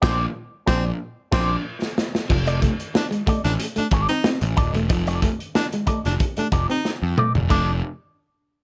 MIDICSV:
0, 0, Header, 1, 8, 480
1, 0, Start_track
1, 0, Tempo, 650054
1, 1698, Time_signature, 4, 2, 24, 8
1, 6377, End_track
2, 0, Start_track
2, 0, Title_t, "Clean electric guitar"
2, 0, Program_c, 0, 27
2, 12, Note_on_c, 0, 74, 106
2, 18, Note_on_c, 0, 72, 106
2, 20, Note_on_c, 0, 68, 99
2, 180, Note_off_c, 0, 74, 0
2, 184, Note_off_c, 0, 72, 0
2, 185, Note_off_c, 0, 68, 0
2, 490, Note_on_c, 0, 68, 101
2, 494, Note_on_c, 0, 72, 93
2, 500, Note_on_c, 0, 74, 100
2, 659, Note_off_c, 0, 68, 0
2, 661, Note_off_c, 0, 72, 0
2, 665, Note_off_c, 0, 74, 0
2, 970, Note_on_c, 0, 68, 90
2, 981, Note_on_c, 0, 72, 92
2, 981, Note_on_c, 0, 74, 90
2, 1139, Note_off_c, 0, 68, 0
2, 1145, Note_off_c, 0, 72, 0
2, 1145, Note_off_c, 0, 74, 0
2, 1826, Note_on_c, 0, 74, 94
2, 1830, Note_on_c, 0, 69, 92
2, 1834, Note_on_c, 0, 63, 66
2, 1927, Note_off_c, 0, 63, 0
2, 1932, Note_off_c, 0, 69, 0
2, 1932, Note_off_c, 0, 74, 0
2, 2420, Note_on_c, 0, 63, 64
2, 2427, Note_on_c, 0, 69, 66
2, 2430, Note_on_c, 0, 74, 75
2, 2512, Note_off_c, 0, 63, 0
2, 2516, Note_off_c, 0, 69, 0
2, 2517, Note_off_c, 0, 74, 0
2, 2898, Note_on_c, 0, 63, 71
2, 2902, Note_on_c, 0, 69, 91
2, 2908, Note_on_c, 0, 74, 87
2, 3016, Note_off_c, 0, 74, 0
2, 3025, Note_off_c, 0, 69, 0
2, 3050, Note_off_c, 0, 63, 0
2, 3371, Note_on_c, 0, 63, 79
2, 3373, Note_on_c, 0, 69, 94
2, 3381, Note_on_c, 0, 74, 98
2, 3494, Note_off_c, 0, 63, 0
2, 3494, Note_off_c, 0, 74, 0
2, 3495, Note_off_c, 0, 69, 0
2, 3747, Note_on_c, 0, 74, 90
2, 3754, Note_on_c, 0, 69, 79
2, 3759, Note_on_c, 0, 63, 68
2, 3846, Note_off_c, 0, 63, 0
2, 3848, Note_off_c, 0, 69, 0
2, 3849, Note_off_c, 0, 74, 0
2, 4329, Note_on_c, 0, 63, 71
2, 4337, Note_on_c, 0, 69, 72
2, 4340, Note_on_c, 0, 74, 68
2, 4427, Note_off_c, 0, 63, 0
2, 4431, Note_off_c, 0, 69, 0
2, 4432, Note_off_c, 0, 74, 0
2, 4813, Note_on_c, 0, 63, 70
2, 4819, Note_on_c, 0, 69, 79
2, 4823, Note_on_c, 0, 74, 80
2, 4932, Note_off_c, 0, 74, 0
2, 4935, Note_off_c, 0, 63, 0
2, 4938, Note_off_c, 0, 69, 0
2, 5299, Note_on_c, 0, 63, 85
2, 5304, Note_on_c, 0, 69, 81
2, 5309, Note_on_c, 0, 74, 93
2, 5418, Note_off_c, 0, 74, 0
2, 5419, Note_off_c, 0, 63, 0
2, 5421, Note_off_c, 0, 69, 0
2, 5535, Note_on_c, 0, 63, 90
2, 5538, Note_on_c, 0, 69, 86
2, 5545, Note_on_c, 0, 74, 93
2, 5687, Note_off_c, 0, 63, 0
2, 5688, Note_off_c, 0, 69, 0
2, 5692, Note_off_c, 0, 74, 0
2, 6377, End_track
3, 0, Start_track
3, 0, Title_t, "Baritone saxophone"
3, 0, Program_c, 1, 67
3, 23, Note_on_c, 1, 60, 87
3, 146, Note_off_c, 1, 60, 0
3, 499, Note_on_c, 1, 60, 111
3, 623, Note_off_c, 1, 60, 0
3, 982, Note_on_c, 1, 60, 96
3, 1105, Note_off_c, 1, 60, 0
3, 2189, Note_on_c, 1, 62, 87
3, 2266, Note_off_c, 1, 62, 0
3, 2546, Note_on_c, 1, 62, 93
3, 2617, Note_off_c, 1, 62, 0
3, 2791, Note_on_c, 1, 62, 89
3, 2861, Note_off_c, 1, 62, 0
3, 3020, Note_on_c, 1, 63, 115
3, 3174, Note_off_c, 1, 63, 0
3, 4106, Note_on_c, 1, 62, 96
3, 4185, Note_off_c, 1, 62, 0
3, 4474, Note_on_c, 1, 62, 87
3, 4543, Note_off_c, 1, 62, 0
3, 4721, Note_on_c, 1, 62, 89
3, 4788, Note_off_c, 1, 62, 0
3, 4957, Note_on_c, 1, 63, 104
3, 5106, Note_off_c, 1, 63, 0
3, 5547, Note_on_c, 1, 62, 95
3, 5712, Note_off_c, 1, 62, 0
3, 6377, End_track
4, 0, Start_track
4, 0, Title_t, "Clean electric guitar"
4, 0, Program_c, 2, 27
4, 1694, Note_on_c, 2, 53, 93
4, 1776, Note_off_c, 2, 53, 0
4, 1935, Note_on_c, 2, 57, 84
4, 2017, Note_off_c, 2, 57, 0
4, 2296, Note_on_c, 2, 56, 82
4, 2371, Note_off_c, 2, 56, 0
4, 2413, Note_on_c, 2, 57, 85
4, 2495, Note_off_c, 2, 57, 0
4, 2777, Note_on_c, 2, 57, 78
4, 2851, Note_off_c, 2, 57, 0
4, 3025, Note_on_c, 2, 60, 74
4, 3097, Note_off_c, 2, 60, 0
4, 3138, Note_on_c, 2, 60, 85
4, 3219, Note_off_c, 2, 60, 0
4, 3509, Note_on_c, 2, 57, 83
4, 3579, Note_off_c, 2, 57, 0
4, 3617, Note_on_c, 2, 53, 97
4, 3698, Note_off_c, 2, 53, 0
4, 3864, Note_on_c, 2, 57, 77
4, 3943, Note_off_c, 2, 57, 0
4, 4236, Note_on_c, 2, 56, 74
4, 4304, Note_off_c, 2, 56, 0
4, 4346, Note_on_c, 2, 57, 71
4, 4424, Note_off_c, 2, 57, 0
4, 4711, Note_on_c, 2, 57, 72
4, 4781, Note_off_c, 2, 57, 0
4, 4945, Note_on_c, 2, 60, 73
4, 5017, Note_off_c, 2, 60, 0
4, 5299, Note_on_c, 2, 57, 73
4, 5380, Note_off_c, 2, 57, 0
4, 5538, Note_on_c, 2, 57, 80
4, 5683, Note_off_c, 2, 57, 0
4, 6377, End_track
5, 0, Start_track
5, 0, Title_t, "Picked electric bass"
5, 0, Program_c, 3, 34
5, 20, Note_on_c, 3, 34, 105
5, 185, Note_off_c, 3, 34, 0
5, 502, Note_on_c, 3, 34, 99
5, 666, Note_off_c, 3, 34, 0
5, 979, Note_on_c, 3, 34, 102
5, 1144, Note_off_c, 3, 34, 0
5, 1701, Note_on_c, 3, 29, 105
5, 1972, Note_off_c, 3, 29, 0
5, 2547, Note_on_c, 3, 33, 88
5, 2630, Note_off_c, 3, 33, 0
5, 2893, Note_on_c, 3, 32, 97
5, 2989, Note_off_c, 3, 32, 0
5, 3264, Note_on_c, 3, 33, 92
5, 3347, Note_off_c, 3, 33, 0
5, 3380, Note_on_c, 3, 27, 86
5, 3473, Note_off_c, 3, 27, 0
5, 3497, Note_on_c, 3, 28, 101
5, 3616, Note_off_c, 3, 28, 0
5, 3616, Note_on_c, 3, 29, 93
5, 3888, Note_off_c, 3, 29, 0
5, 4473, Note_on_c, 3, 29, 89
5, 4554, Note_off_c, 3, 29, 0
5, 4818, Note_on_c, 3, 29, 90
5, 4912, Note_off_c, 3, 29, 0
5, 5188, Note_on_c, 3, 41, 86
5, 5271, Note_off_c, 3, 41, 0
5, 5433, Note_on_c, 3, 28, 90
5, 5514, Note_off_c, 3, 28, 0
5, 5540, Note_on_c, 3, 29, 94
5, 5763, Note_off_c, 3, 29, 0
5, 6377, End_track
6, 0, Start_track
6, 0, Title_t, "Muted clean electric guitar strokes"
6, 1694, Note_on_c, 9, 29, 56
6, 1768, Note_off_c, 9, 29, 0
6, 1825, Note_on_c, 9, 29, 45
6, 1899, Note_off_c, 9, 29, 0
6, 1941, Note_on_c, 9, 29, 49
6, 2015, Note_off_c, 9, 29, 0
6, 2067, Note_on_c, 9, 29, 38
6, 2141, Note_off_c, 9, 29, 0
6, 2182, Note_on_c, 9, 29, 43
6, 2256, Note_off_c, 9, 29, 0
6, 2789, Note_on_c, 9, 29, 42
6, 2863, Note_off_c, 9, 29, 0
6, 2903, Note_on_c, 9, 29, 50
6, 2977, Note_off_c, 9, 29, 0
6, 3140, Note_on_c, 9, 29, 48
6, 3214, Note_off_c, 9, 29, 0
6, 3270, Note_on_c, 9, 29, 51
6, 3343, Note_off_c, 9, 29, 0
6, 3503, Note_on_c, 9, 29, 59
6, 3576, Note_off_c, 9, 29, 0
6, 3616, Note_on_c, 9, 29, 48
6, 3690, Note_off_c, 9, 29, 0
6, 3750, Note_on_c, 9, 29, 45
6, 3824, Note_off_c, 9, 29, 0
6, 3981, Note_on_c, 9, 29, 49
6, 4055, Note_off_c, 9, 29, 0
6, 4092, Note_on_c, 9, 29, 46
6, 4166, Note_off_c, 9, 29, 0
6, 4703, Note_on_c, 9, 29, 45
6, 4777, Note_off_c, 9, 29, 0
6, 4824, Note_on_c, 9, 29, 52
6, 4898, Note_off_c, 9, 29, 0
6, 5055, Note_on_c, 9, 29, 36
6, 5129, Note_off_c, 9, 29, 0
6, 5186, Note_on_c, 9, 29, 42
6, 5260, Note_off_c, 9, 29, 0
6, 5427, Note_on_c, 9, 29, 37
6, 5501, Note_off_c, 9, 29, 0
6, 6377, End_track
7, 0, Start_track
7, 0, Title_t, "Muted picked electric bass strokes"
7, 2417, Note_on_c, 9, 29, 52
7, 2491, Note_off_c, 9, 29, 0
7, 2793, Note_on_c, 9, 29, 46
7, 2866, Note_off_c, 9, 29, 0
7, 4336, Note_on_c, 9, 29, 45
7, 4409, Note_off_c, 9, 29, 0
7, 4717, Note_on_c, 9, 29, 42
7, 4791, Note_off_c, 9, 29, 0
7, 6377, End_track
8, 0, Start_track
8, 0, Title_t, "Drums"
8, 20, Note_on_c, 9, 36, 114
8, 23, Note_on_c, 9, 49, 82
8, 25, Note_on_c, 9, 38, 113
8, 93, Note_off_c, 9, 36, 0
8, 97, Note_off_c, 9, 49, 0
8, 98, Note_off_c, 9, 38, 0
8, 498, Note_on_c, 9, 38, 101
8, 499, Note_on_c, 9, 36, 106
8, 572, Note_off_c, 9, 38, 0
8, 573, Note_off_c, 9, 36, 0
8, 978, Note_on_c, 9, 36, 119
8, 978, Note_on_c, 9, 49, 89
8, 980, Note_on_c, 9, 38, 107
8, 1052, Note_off_c, 9, 36, 0
8, 1052, Note_off_c, 9, 49, 0
8, 1054, Note_off_c, 9, 38, 0
8, 1345, Note_on_c, 9, 38, 59
8, 1419, Note_off_c, 9, 38, 0
8, 1461, Note_on_c, 9, 38, 92
8, 1535, Note_off_c, 9, 38, 0
8, 1587, Note_on_c, 9, 38, 86
8, 1661, Note_off_c, 9, 38, 0
8, 1696, Note_on_c, 9, 49, 97
8, 1698, Note_on_c, 9, 36, 109
8, 1770, Note_off_c, 9, 49, 0
8, 1772, Note_off_c, 9, 36, 0
8, 1821, Note_on_c, 9, 42, 60
8, 1895, Note_off_c, 9, 42, 0
8, 1936, Note_on_c, 9, 36, 85
8, 1940, Note_on_c, 9, 42, 87
8, 2010, Note_off_c, 9, 36, 0
8, 2014, Note_off_c, 9, 42, 0
8, 2066, Note_on_c, 9, 42, 54
8, 2140, Note_off_c, 9, 42, 0
8, 2179, Note_on_c, 9, 38, 123
8, 2253, Note_off_c, 9, 38, 0
8, 2305, Note_on_c, 9, 42, 59
8, 2379, Note_off_c, 9, 42, 0
8, 2416, Note_on_c, 9, 36, 88
8, 2418, Note_on_c, 9, 42, 88
8, 2490, Note_off_c, 9, 36, 0
8, 2492, Note_off_c, 9, 42, 0
8, 2544, Note_on_c, 9, 42, 48
8, 2549, Note_on_c, 9, 38, 37
8, 2618, Note_off_c, 9, 42, 0
8, 2623, Note_off_c, 9, 38, 0
8, 2656, Note_on_c, 9, 42, 108
8, 2729, Note_off_c, 9, 42, 0
8, 2776, Note_on_c, 9, 42, 64
8, 2850, Note_off_c, 9, 42, 0
8, 2887, Note_on_c, 9, 42, 76
8, 2891, Note_on_c, 9, 36, 97
8, 2961, Note_off_c, 9, 42, 0
8, 2965, Note_off_c, 9, 36, 0
8, 3016, Note_on_c, 9, 42, 48
8, 3090, Note_off_c, 9, 42, 0
8, 3132, Note_on_c, 9, 38, 122
8, 3206, Note_off_c, 9, 38, 0
8, 3259, Note_on_c, 9, 42, 59
8, 3332, Note_off_c, 9, 42, 0
8, 3372, Note_on_c, 9, 42, 75
8, 3378, Note_on_c, 9, 36, 95
8, 3446, Note_off_c, 9, 42, 0
8, 3452, Note_off_c, 9, 36, 0
8, 3502, Note_on_c, 9, 42, 46
8, 3576, Note_off_c, 9, 42, 0
8, 3615, Note_on_c, 9, 42, 87
8, 3618, Note_on_c, 9, 36, 120
8, 3689, Note_off_c, 9, 42, 0
8, 3692, Note_off_c, 9, 36, 0
8, 3743, Note_on_c, 9, 42, 63
8, 3817, Note_off_c, 9, 42, 0
8, 3857, Note_on_c, 9, 36, 92
8, 3860, Note_on_c, 9, 42, 92
8, 3931, Note_off_c, 9, 36, 0
8, 3934, Note_off_c, 9, 42, 0
8, 3989, Note_on_c, 9, 42, 51
8, 4063, Note_off_c, 9, 42, 0
8, 4100, Note_on_c, 9, 38, 109
8, 4174, Note_off_c, 9, 38, 0
8, 4227, Note_on_c, 9, 42, 56
8, 4301, Note_off_c, 9, 42, 0
8, 4333, Note_on_c, 9, 42, 85
8, 4336, Note_on_c, 9, 36, 91
8, 4406, Note_off_c, 9, 42, 0
8, 4410, Note_off_c, 9, 36, 0
8, 4467, Note_on_c, 9, 42, 49
8, 4473, Note_on_c, 9, 38, 36
8, 4541, Note_off_c, 9, 42, 0
8, 4547, Note_off_c, 9, 38, 0
8, 4577, Note_on_c, 9, 42, 91
8, 4580, Note_on_c, 9, 36, 104
8, 4651, Note_off_c, 9, 42, 0
8, 4654, Note_off_c, 9, 36, 0
8, 4702, Note_on_c, 9, 42, 55
8, 4776, Note_off_c, 9, 42, 0
8, 4813, Note_on_c, 9, 42, 80
8, 4815, Note_on_c, 9, 36, 102
8, 4887, Note_off_c, 9, 42, 0
8, 4889, Note_off_c, 9, 36, 0
8, 4946, Note_on_c, 9, 42, 41
8, 5020, Note_off_c, 9, 42, 0
8, 5059, Note_on_c, 9, 38, 58
8, 5133, Note_off_c, 9, 38, 0
8, 5300, Note_on_c, 9, 45, 94
8, 5373, Note_off_c, 9, 45, 0
8, 5428, Note_on_c, 9, 43, 85
8, 5502, Note_off_c, 9, 43, 0
8, 5538, Note_on_c, 9, 49, 80
8, 5540, Note_on_c, 9, 36, 97
8, 5612, Note_off_c, 9, 49, 0
8, 5614, Note_off_c, 9, 36, 0
8, 6377, End_track
0, 0, End_of_file